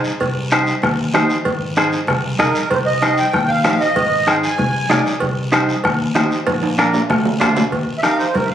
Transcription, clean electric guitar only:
0, 0, Header, 1, 2, 480
1, 0, Start_track
1, 0, Tempo, 313316
1, 313, Time_signature, 4, 2, 24, 8
1, 13088, End_track
2, 0, Start_track
2, 0, Title_t, "Clean electric guitar"
2, 0, Program_c, 0, 27
2, 0, Note_on_c, 0, 63, 74
2, 0, Note_on_c, 0, 68, 68
2, 0, Note_on_c, 0, 72, 80
2, 166, Note_off_c, 0, 63, 0
2, 169, Note_off_c, 0, 68, 0
2, 173, Note_off_c, 0, 72, 0
2, 795, Note_on_c, 0, 63, 77
2, 806, Note_on_c, 0, 67, 76
2, 814, Note_on_c, 0, 72, 101
2, 1130, Note_off_c, 0, 63, 0
2, 1135, Note_off_c, 0, 67, 0
2, 1140, Note_off_c, 0, 72, 0
2, 1751, Note_on_c, 0, 63, 89
2, 1760, Note_on_c, 0, 67, 77
2, 1770, Note_on_c, 0, 72, 94
2, 2088, Note_off_c, 0, 63, 0
2, 2090, Note_off_c, 0, 67, 0
2, 2097, Note_off_c, 0, 72, 0
2, 2711, Note_on_c, 0, 63, 82
2, 2721, Note_on_c, 0, 68, 77
2, 2729, Note_on_c, 0, 72, 99
2, 3048, Note_off_c, 0, 63, 0
2, 3050, Note_off_c, 0, 68, 0
2, 3056, Note_off_c, 0, 72, 0
2, 3661, Note_on_c, 0, 63, 71
2, 3666, Note_on_c, 0, 68, 69
2, 3669, Note_on_c, 0, 75, 83
2, 4003, Note_off_c, 0, 63, 0
2, 4003, Note_off_c, 0, 68, 0
2, 4006, Note_off_c, 0, 75, 0
2, 4630, Note_on_c, 0, 63, 70
2, 4643, Note_on_c, 0, 72, 75
2, 4646, Note_on_c, 0, 67, 57
2, 4968, Note_off_c, 0, 63, 0
2, 4971, Note_off_c, 0, 67, 0
2, 4973, Note_off_c, 0, 72, 0
2, 5582, Note_on_c, 0, 63, 69
2, 5590, Note_on_c, 0, 67, 68
2, 5600, Note_on_c, 0, 72, 79
2, 5923, Note_off_c, 0, 63, 0
2, 5924, Note_off_c, 0, 67, 0
2, 5931, Note_off_c, 0, 72, 0
2, 6539, Note_on_c, 0, 63, 63
2, 6548, Note_on_c, 0, 68, 69
2, 6558, Note_on_c, 0, 72, 70
2, 6881, Note_off_c, 0, 63, 0
2, 6887, Note_off_c, 0, 68, 0
2, 6887, Note_off_c, 0, 72, 0
2, 7501, Note_on_c, 0, 63, 83
2, 7510, Note_on_c, 0, 68, 80
2, 7518, Note_on_c, 0, 74, 99
2, 7842, Note_off_c, 0, 63, 0
2, 7846, Note_off_c, 0, 68, 0
2, 7850, Note_off_c, 0, 74, 0
2, 8458, Note_on_c, 0, 63, 85
2, 8463, Note_on_c, 0, 67, 78
2, 8469, Note_on_c, 0, 72, 93
2, 8800, Note_off_c, 0, 63, 0
2, 8803, Note_off_c, 0, 67, 0
2, 8805, Note_off_c, 0, 72, 0
2, 9423, Note_on_c, 0, 63, 83
2, 9435, Note_on_c, 0, 67, 81
2, 9442, Note_on_c, 0, 72, 96
2, 9763, Note_off_c, 0, 63, 0
2, 9768, Note_off_c, 0, 67, 0
2, 9772, Note_off_c, 0, 72, 0
2, 10392, Note_on_c, 0, 62, 84
2, 10399, Note_on_c, 0, 65, 72
2, 10408, Note_on_c, 0, 70, 99
2, 10728, Note_off_c, 0, 62, 0
2, 10732, Note_off_c, 0, 65, 0
2, 10733, Note_off_c, 0, 70, 0
2, 11340, Note_on_c, 0, 62, 80
2, 11354, Note_on_c, 0, 65, 78
2, 11354, Note_on_c, 0, 72, 90
2, 11684, Note_off_c, 0, 62, 0
2, 11686, Note_off_c, 0, 65, 0
2, 11689, Note_off_c, 0, 72, 0
2, 12300, Note_on_c, 0, 63, 66
2, 12305, Note_on_c, 0, 67, 61
2, 12316, Note_on_c, 0, 70, 74
2, 12643, Note_off_c, 0, 63, 0
2, 12646, Note_off_c, 0, 67, 0
2, 12649, Note_off_c, 0, 70, 0
2, 13088, End_track
0, 0, End_of_file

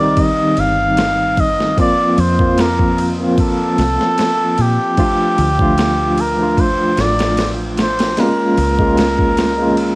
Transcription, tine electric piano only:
0, 0, Header, 1, 2, 480
1, 0, Start_track
1, 0, Tempo, 800000
1, 1064, Time_signature, 4, 2, 24, 8
1, 5971, End_track
2, 0, Start_track
2, 0, Title_t, "Tine electric piano"
2, 0, Program_c, 0, 4
2, 0, Control_c, 0, 64, 127
2, 0, Note_on_c, 0, 51, 74
2, 0, Note_on_c, 0, 55, 66
2, 0, Note_on_c, 0, 60, 74
2, 0, Note_on_c, 0, 63, 86
2, 7, Note_off_c, 0, 60, 0
2, 7, Note_on_c, 0, 60, 66
2, 17, Note_off_c, 0, 63, 0
2, 17, Note_on_c, 0, 63, 81
2, 1034, Note_off_c, 0, 51, 0
2, 1039, Note_off_c, 0, 55, 0
2, 1044, Note_off_c, 0, 60, 0
2, 1049, Note_off_c, 0, 63, 0
2, 1061, Note_on_c, 0, 53, 86
2, 1066, Note_on_c, 0, 58, 84
2, 1071, Control_c, 0, 64, 0
2, 1072, Note_on_c, 0, 60, 82
2, 1076, Note_on_c, 0, 65, 98
2, 1164, Control_c, 0, 64, 127
2, 1401, Note_off_c, 0, 53, 0
2, 1404, Note_off_c, 0, 58, 0
2, 1406, Note_off_c, 0, 60, 0
2, 1409, Note_off_c, 0, 65, 0
2, 1432, Note_on_c, 0, 53, 81
2, 1436, Note_on_c, 0, 58, 73
2, 1442, Note_on_c, 0, 60, 77
2, 1446, Note_on_c, 0, 65, 88
2, 1882, Note_off_c, 0, 53, 0
2, 1884, Note_off_c, 0, 58, 0
2, 1887, Note_off_c, 0, 60, 0
2, 1889, Note_off_c, 0, 65, 0
2, 1909, Note_on_c, 0, 53, 77
2, 1920, Note_on_c, 0, 58, 67
2, 1930, Note_on_c, 0, 60, 68
2, 1942, Note_on_c, 0, 65, 78
2, 2955, Note_off_c, 0, 53, 0
2, 2961, Note_off_c, 0, 58, 0
2, 2966, Note_off_c, 0, 60, 0
2, 2972, Note_off_c, 0, 65, 0
2, 2985, Note_on_c, 0, 53, 89
2, 2990, Note_on_c, 0, 57, 84
2, 2993, Control_c, 0, 64, 0
2, 2994, Note_on_c, 0, 62, 84
2, 2999, Note_on_c, 0, 65, 94
2, 3106, Control_c, 0, 64, 127
2, 3323, Note_off_c, 0, 53, 0
2, 3325, Note_off_c, 0, 57, 0
2, 3327, Note_off_c, 0, 62, 0
2, 3330, Note_off_c, 0, 65, 0
2, 3354, Note_on_c, 0, 53, 76
2, 3360, Note_on_c, 0, 57, 76
2, 3365, Note_on_c, 0, 62, 72
2, 3369, Note_on_c, 0, 65, 89
2, 3803, Note_off_c, 0, 53, 0
2, 3806, Note_off_c, 0, 57, 0
2, 3808, Note_off_c, 0, 62, 0
2, 3810, Note_off_c, 0, 65, 0
2, 3826, Note_on_c, 0, 53, 73
2, 3835, Note_on_c, 0, 57, 68
2, 3847, Note_on_c, 0, 62, 70
2, 3857, Note_on_c, 0, 65, 84
2, 4874, Note_off_c, 0, 53, 0
2, 4878, Note_off_c, 0, 57, 0
2, 4884, Note_off_c, 0, 62, 0
2, 4889, Note_off_c, 0, 65, 0
2, 4904, Note_on_c, 0, 56, 93
2, 4909, Note_on_c, 0, 58, 80
2, 4912, Control_c, 0, 64, 0
2, 4914, Note_on_c, 0, 61, 81
2, 4919, Note_on_c, 0, 65, 94
2, 5013, Control_c, 0, 64, 127
2, 5243, Note_off_c, 0, 56, 0
2, 5245, Note_off_c, 0, 58, 0
2, 5248, Note_off_c, 0, 61, 0
2, 5250, Note_off_c, 0, 65, 0
2, 5275, Note_on_c, 0, 56, 86
2, 5280, Note_on_c, 0, 58, 80
2, 5287, Note_on_c, 0, 61, 77
2, 5292, Note_on_c, 0, 65, 87
2, 5723, Note_off_c, 0, 56, 0
2, 5726, Note_off_c, 0, 58, 0
2, 5729, Note_off_c, 0, 61, 0
2, 5732, Note_off_c, 0, 65, 0
2, 5746, Note_on_c, 0, 56, 82
2, 5754, Note_on_c, 0, 58, 73
2, 5765, Note_on_c, 0, 61, 68
2, 5775, Note_on_c, 0, 65, 81
2, 5971, Note_off_c, 0, 56, 0
2, 5971, Note_off_c, 0, 58, 0
2, 5971, Note_off_c, 0, 61, 0
2, 5971, Note_off_c, 0, 65, 0
2, 5971, End_track
0, 0, End_of_file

